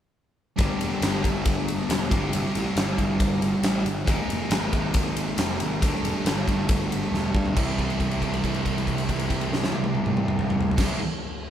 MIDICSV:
0, 0, Header, 1, 4, 480
1, 0, Start_track
1, 0, Key_signature, 0, "major"
1, 0, Tempo, 435730
1, 646, Time_signature, 4, 2, 24, 8
1, 12668, End_track
2, 0, Start_track
2, 0, Title_t, "Distorted electric guitar"
2, 0, Program_c, 0, 30
2, 624, Note_on_c, 0, 55, 88
2, 638, Note_on_c, 0, 59, 96
2, 649, Note_on_c, 0, 62, 92
2, 654, Note_on_c, 0, 67, 93
2, 2297, Note_off_c, 0, 55, 0
2, 2304, Note_off_c, 0, 59, 0
2, 2310, Note_off_c, 0, 62, 0
2, 2311, Note_on_c, 0, 55, 91
2, 2312, Note_off_c, 0, 67, 0
2, 2322, Note_on_c, 0, 60, 88
2, 2326, Note_on_c, 0, 64, 80
2, 2336, Note_on_c, 0, 67, 90
2, 4223, Note_off_c, 0, 55, 0
2, 4228, Note_off_c, 0, 60, 0
2, 4230, Note_off_c, 0, 64, 0
2, 4235, Note_off_c, 0, 67, 0
2, 4469, Note_on_c, 0, 56, 96
2, 4483, Note_on_c, 0, 58, 101
2, 4490, Note_on_c, 0, 63, 98
2, 4495, Note_on_c, 0, 68, 95
2, 6385, Note_off_c, 0, 56, 0
2, 6392, Note_off_c, 0, 58, 0
2, 6396, Note_off_c, 0, 63, 0
2, 6398, Note_off_c, 0, 68, 0
2, 6399, Note_on_c, 0, 55, 97
2, 6411, Note_on_c, 0, 57, 89
2, 6420, Note_on_c, 0, 62, 100
2, 6429, Note_on_c, 0, 69, 92
2, 8305, Note_on_c, 0, 48, 100
2, 8311, Note_off_c, 0, 55, 0
2, 8318, Note_off_c, 0, 57, 0
2, 8322, Note_off_c, 0, 62, 0
2, 8324, Note_on_c, 0, 52, 99
2, 8326, Note_off_c, 0, 69, 0
2, 8332, Note_on_c, 0, 55, 101
2, 8343, Note_on_c, 0, 60, 100
2, 8350, Note_on_c, 0, 64, 99
2, 11858, Note_off_c, 0, 48, 0
2, 11863, Note_on_c, 0, 48, 99
2, 11869, Note_off_c, 0, 52, 0
2, 11873, Note_on_c, 0, 52, 88
2, 11883, Note_off_c, 0, 55, 0
2, 11888, Note_on_c, 0, 55, 90
2, 11890, Note_off_c, 0, 60, 0
2, 11894, Note_on_c, 0, 60, 88
2, 11902, Note_off_c, 0, 64, 0
2, 11906, Note_on_c, 0, 64, 96
2, 12086, Note_off_c, 0, 48, 0
2, 12091, Note_off_c, 0, 52, 0
2, 12098, Note_off_c, 0, 55, 0
2, 12101, Note_off_c, 0, 60, 0
2, 12107, Note_off_c, 0, 64, 0
2, 12668, End_track
3, 0, Start_track
3, 0, Title_t, "Picked electric bass"
3, 0, Program_c, 1, 34
3, 644, Note_on_c, 1, 31, 89
3, 747, Note_off_c, 1, 31, 0
3, 877, Note_on_c, 1, 28, 76
3, 983, Note_off_c, 1, 28, 0
3, 1118, Note_on_c, 1, 31, 90
3, 1326, Note_off_c, 1, 31, 0
3, 1369, Note_on_c, 1, 31, 80
3, 1982, Note_off_c, 1, 31, 0
3, 2084, Note_on_c, 1, 28, 88
3, 2289, Note_off_c, 1, 28, 0
3, 2324, Note_on_c, 1, 31, 86
3, 2529, Note_off_c, 1, 31, 0
3, 2572, Note_on_c, 1, 31, 92
3, 2671, Note_off_c, 1, 31, 0
3, 2814, Note_on_c, 1, 33, 75
3, 2912, Note_off_c, 1, 33, 0
3, 3038, Note_on_c, 1, 31, 91
3, 3246, Note_off_c, 1, 31, 0
3, 3282, Note_on_c, 1, 31, 86
3, 3899, Note_off_c, 1, 31, 0
3, 4002, Note_on_c, 1, 33, 83
3, 4208, Note_off_c, 1, 33, 0
3, 4241, Note_on_c, 1, 31, 85
3, 4448, Note_off_c, 1, 31, 0
3, 4489, Note_on_c, 1, 32, 99
3, 4590, Note_off_c, 1, 32, 0
3, 4722, Note_on_c, 1, 29, 80
3, 4826, Note_off_c, 1, 29, 0
3, 4959, Note_on_c, 1, 32, 87
3, 5167, Note_off_c, 1, 32, 0
3, 5207, Note_on_c, 1, 32, 83
3, 5824, Note_off_c, 1, 32, 0
3, 5924, Note_on_c, 1, 29, 88
3, 6131, Note_off_c, 1, 29, 0
3, 6177, Note_on_c, 1, 32, 85
3, 6378, Note_off_c, 1, 32, 0
3, 6417, Note_on_c, 1, 31, 93
3, 6516, Note_off_c, 1, 31, 0
3, 6647, Note_on_c, 1, 28, 83
3, 6750, Note_off_c, 1, 28, 0
3, 6884, Note_on_c, 1, 31, 90
3, 7091, Note_off_c, 1, 31, 0
3, 7134, Note_on_c, 1, 31, 82
3, 7749, Note_off_c, 1, 31, 0
3, 7845, Note_on_c, 1, 28, 94
3, 8053, Note_off_c, 1, 28, 0
3, 8092, Note_on_c, 1, 43, 87
3, 8297, Note_off_c, 1, 43, 0
3, 8336, Note_on_c, 1, 36, 84
3, 11779, Note_off_c, 1, 36, 0
3, 11876, Note_on_c, 1, 36, 99
3, 12077, Note_off_c, 1, 36, 0
3, 12668, End_track
4, 0, Start_track
4, 0, Title_t, "Drums"
4, 644, Note_on_c, 9, 51, 89
4, 648, Note_on_c, 9, 36, 111
4, 754, Note_off_c, 9, 51, 0
4, 758, Note_off_c, 9, 36, 0
4, 889, Note_on_c, 9, 51, 67
4, 999, Note_off_c, 9, 51, 0
4, 1126, Note_on_c, 9, 51, 90
4, 1139, Note_on_c, 9, 38, 102
4, 1237, Note_off_c, 9, 51, 0
4, 1249, Note_off_c, 9, 38, 0
4, 1368, Note_on_c, 9, 36, 79
4, 1376, Note_on_c, 9, 51, 64
4, 1478, Note_off_c, 9, 36, 0
4, 1486, Note_off_c, 9, 51, 0
4, 1601, Note_on_c, 9, 51, 93
4, 1606, Note_on_c, 9, 36, 107
4, 1712, Note_off_c, 9, 51, 0
4, 1716, Note_off_c, 9, 36, 0
4, 1854, Note_on_c, 9, 51, 70
4, 1964, Note_off_c, 9, 51, 0
4, 2090, Note_on_c, 9, 51, 91
4, 2102, Note_on_c, 9, 38, 104
4, 2200, Note_off_c, 9, 51, 0
4, 2212, Note_off_c, 9, 38, 0
4, 2329, Note_on_c, 9, 36, 109
4, 2334, Note_on_c, 9, 51, 70
4, 2439, Note_off_c, 9, 36, 0
4, 2444, Note_off_c, 9, 51, 0
4, 2566, Note_on_c, 9, 51, 87
4, 2676, Note_off_c, 9, 51, 0
4, 2811, Note_on_c, 9, 51, 67
4, 2921, Note_off_c, 9, 51, 0
4, 3047, Note_on_c, 9, 51, 80
4, 3059, Note_on_c, 9, 38, 106
4, 3157, Note_off_c, 9, 51, 0
4, 3169, Note_off_c, 9, 38, 0
4, 3287, Note_on_c, 9, 36, 76
4, 3289, Note_on_c, 9, 51, 62
4, 3397, Note_off_c, 9, 36, 0
4, 3400, Note_off_c, 9, 51, 0
4, 3526, Note_on_c, 9, 36, 108
4, 3527, Note_on_c, 9, 51, 82
4, 3636, Note_off_c, 9, 36, 0
4, 3637, Note_off_c, 9, 51, 0
4, 3768, Note_on_c, 9, 51, 61
4, 3878, Note_off_c, 9, 51, 0
4, 4002, Note_on_c, 9, 51, 83
4, 4014, Note_on_c, 9, 38, 104
4, 4112, Note_off_c, 9, 51, 0
4, 4124, Note_off_c, 9, 38, 0
4, 4250, Note_on_c, 9, 51, 67
4, 4360, Note_off_c, 9, 51, 0
4, 4488, Note_on_c, 9, 36, 106
4, 4493, Note_on_c, 9, 51, 93
4, 4598, Note_off_c, 9, 36, 0
4, 4603, Note_off_c, 9, 51, 0
4, 4737, Note_on_c, 9, 51, 63
4, 4847, Note_off_c, 9, 51, 0
4, 4964, Note_on_c, 9, 51, 91
4, 4976, Note_on_c, 9, 38, 111
4, 5074, Note_off_c, 9, 51, 0
4, 5087, Note_off_c, 9, 38, 0
4, 5208, Note_on_c, 9, 51, 65
4, 5210, Note_on_c, 9, 36, 82
4, 5318, Note_off_c, 9, 51, 0
4, 5320, Note_off_c, 9, 36, 0
4, 5440, Note_on_c, 9, 51, 96
4, 5449, Note_on_c, 9, 36, 110
4, 5551, Note_off_c, 9, 51, 0
4, 5559, Note_off_c, 9, 36, 0
4, 5690, Note_on_c, 9, 51, 74
4, 5800, Note_off_c, 9, 51, 0
4, 5923, Note_on_c, 9, 51, 94
4, 5935, Note_on_c, 9, 38, 104
4, 6033, Note_off_c, 9, 51, 0
4, 6045, Note_off_c, 9, 38, 0
4, 6168, Note_on_c, 9, 51, 72
4, 6278, Note_off_c, 9, 51, 0
4, 6415, Note_on_c, 9, 36, 111
4, 6418, Note_on_c, 9, 51, 96
4, 6525, Note_off_c, 9, 36, 0
4, 6528, Note_off_c, 9, 51, 0
4, 6662, Note_on_c, 9, 51, 71
4, 6674, Note_on_c, 9, 38, 32
4, 6772, Note_off_c, 9, 51, 0
4, 6785, Note_off_c, 9, 38, 0
4, 6895, Note_on_c, 9, 51, 88
4, 6907, Note_on_c, 9, 38, 110
4, 7005, Note_off_c, 9, 51, 0
4, 7017, Note_off_c, 9, 38, 0
4, 7134, Note_on_c, 9, 36, 76
4, 7143, Note_on_c, 9, 51, 62
4, 7244, Note_off_c, 9, 36, 0
4, 7253, Note_off_c, 9, 51, 0
4, 7367, Note_on_c, 9, 51, 91
4, 7371, Note_on_c, 9, 36, 111
4, 7478, Note_off_c, 9, 51, 0
4, 7481, Note_off_c, 9, 36, 0
4, 7623, Note_on_c, 9, 51, 68
4, 7733, Note_off_c, 9, 51, 0
4, 7868, Note_on_c, 9, 38, 56
4, 7978, Note_off_c, 9, 38, 0
4, 8092, Note_on_c, 9, 36, 89
4, 8202, Note_off_c, 9, 36, 0
4, 8215, Note_on_c, 9, 43, 89
4, 8325, Note_off_c, 9, 43, 0
4, 8335, Note_on_c, 9, 36, 103
4, 8338, Note_on_c, 9, 49, 90
4, 8446, Note_off_c, 9, 36, 0
4, 8448, Note_off_c, 9, 49, 0
4, 8575, Note_on_c, 9, 36, 67
4, 8582, Note_on_c, 9, 49, 45
4, 8685, Note_off_c, 9, 36, 0
4, 8693, Note_off_c, 9, 49, 0
4, 8702, Note_on_c, 9, 57, 44
4, 8812, Note_off_c, 9, 57, 0
4, 8813, Note_on_c, 9, 36, 62
4, 8817, Note_on_c, 9, 49, 43
4, 8923, Note_off_c, 9, 36, 0
4, 8927, Note_off_c, 9, 49, 0
4, 8937, Note_on_c, 9, 57, 47
4, 9047, Note_off_c, 9, 57, 0
4, 9054, Note_on_c, 9, 36, 61
4, 9059, Note_on_c, 9, 49, 43
4, 9164, Note_off_c, 9, 36, 0
4, 9169, Note_off_c, 9, 49, 0
4, 9183, Note_on_c, 9, 57, 46
4, 9293, Note_off_c, 9, 57, 0
4, 9295, Note_on_c, 9, 36, 65
4, 9303, Note_on_c, 9, 49, 47
4, 9405, Note_off_c, 9, 36, 0
4, 9411, Note_on_c, 9, 57, 49
4, 9414, Note_off_c, 9, 49, 0
4, 9521, Note_off_c, 9, 57, 0
4, 9534, Note_on_c, 9, 36, 66
4, 9538, Note_on_c, 9, 49, 52
4, 9644, Note_off_c, 9, 36, 0
4, 9648, Note_off_c, 9, 49, 0
4, 9670, Note_on_c, 9, 57, 48
4, 9773, Note_on_c, 9, 36, 57
4, 9780, Note_off_c, 9, 57, 0
4, 9780, Note_on_c, 9, 49, 46
4, 9884, Note_off_c, 9, 36, 0
4, 9890, Note_off_c, 9, 49, 0
4, 9892, Note_on_c, 9, 57, 51
4, 10002, Note_off_c, 9, 57, 0
4, 10013, Note_on_c, 9, 36, 68
4, 10015, Note_on_c, 9, 49, 53
4, 10123, Note_off_c, 9, 36, 0
4, 10125, Note_off_c, 9, 49, 0
4, 10128, Note_on_c, 9, 57, 53
4, 10238, Note_off_c, 9, 57, 0
4, 10247, Note_on_c, 9, 36, 65
4, 10249, Note_on_c, 9, 49, 52
4, 10357, Note_off_c, 9, 36, 0
4, 10360, Note_off_c, 9, 49, 0
4, 10367, Note_on_c, 9, 57, 55
4, 10477, Note_off_c, 9, 57, 0
4, 10501, Note_on_c, 9, 38, 88
4, 10611, Note_off_c, 9, 38, 0
4, 10615, Note_on_c, 9, 38, 86
4, 10719, Note_on_c, 9, 48, 91
4, 10726, Note_off_c, 9, 38, 0
4, 10829, Note_off_c, 9, 48, 0
4, 10839, Note_on_c, 9, 48, 97
4, 10949, Note_off_c, 9, 48, 0
4, 10960, Note_on_c, 9, 48, 83
4, 11071, Note_off_c, 9, 48, 0
4, 11082, Note_on_c, 9, 47, 95
4, 11192, Note_off_c, 9, 47, 0
4, 11202, Note_on_c, 9, 47, 99
4, 11313, Note_off_c, 9, 47, 0
4, 11328, Note_on_c, 9, 45, 100
4, 11438, Note_off_c, 9, 45, 0
4, 11445, Note_on_c, 9, 45, 96
4, 11556, Note_off_c, 9, 45, 0
4, 11568, Note_on_c, 9, 45, 97
4, 11679, Note_off_c, 9, 45, 0
4, 11683, Note_on_c, 9, 43, 105
4, 11794, Note_off_c, 9, 43, 0
4, 11803, Note_on_c, 9, 43, 99
4, 11874, Note_on_c, 9, 49, 104
4, 11875, Note_on_c, 9, 36, 103
4, 11886, Note_on_c, 9, 38, 94
4, 11913, Note_off_c, 9, 43, 0
4, 11984, Note_off_c, 9, 49, 0
4, 11985, Note_off_c, 9, 36, 0
4, 11996, Note_off_c, 9, 38, 0
4, 12668, End_track
0, 0, End_of_file